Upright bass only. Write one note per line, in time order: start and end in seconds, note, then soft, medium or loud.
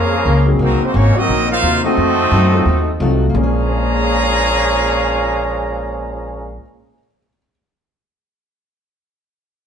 0.00 0.25 F2 medium
0.25 0.59 C#2 medium
0.59 0.80 C2 medium
0.94 1.14 G#1 loud
1.28 1.62 A#1 medium
1.62 1.96 D#2 medium
1.97 2.31 F2 medium
2.31 2.65 F#2 loud
2.65 2.99 D#2 medium
3.00 3.34 C2 loud
3.34 6.57 A#1 loud